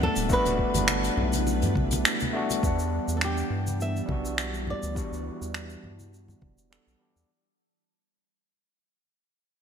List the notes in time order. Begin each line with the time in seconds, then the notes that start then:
Already playing: G3 A3 B3 D4 F#4 B4 F#5
0.02 A4, low conga
0.16 D1, closed hi-hat, shaker
0.29 A3 B3 D4 E4 F#4, kick, shaker
0.33 B4
0.45 D1, closed hi-hat, muted conga, shaker
0.59 kick
0.74 G1, closed hi-hat, low conga, shaker
0.88 finger snap, muted conga, shaker
1.04 closed hi-hat, shaker
1.17 B1, low conga
1.33 closed hi-hat, high conga, shaker
1.47 muted conga, shaker
1.62 G2, closed hi-hat, low conga, shaker
1.75 B1, kick, high conga
1.91 closed hi-hat, muted conga, shaker
2.05 finger snap, shaker
2.20 closed hi-hat, high conga, shaker
2.33 A3 B3 D4 F#4
2.50 closed hi-hat, muted conga, shaker
2.60 E2 E3 G3 B3 D4, kick, shaker
2.65 D4 F#5
2.79 shaker
3.08 E2, shaker
3.17 A4
3.21 G4, finger snap, shaker
3.37 shaker
3.50 G2
3.67 high conga, shaker
3.81 E5, shaker
3.96 shaker
4.06 B1 G3 B3, kick, high conga
4.10 D4 F#4
4.25 shaker
4.38 finger snap, shaker
4.54 shaker
4.67 D5, low conga
4.83 D2, shaker
4.95 G3 B3 D4 E4 F#4, kick, shaker
5.12 D2, shaker
5.42 E2, shaker
5.54 finger snap, shaker
5.70 shaker
5.84 G2, low conga
5.99 high conga, shaker
6.14 shaker
6.28 low conga, shaker
6.42 E1, kick, high conga
6.58 shaker
6.70 G3 B3 D4 A4, finger snap, shaker
6.87 B1, shaker
6.99 G3 B3 D4 G4
7.16 E2, shaker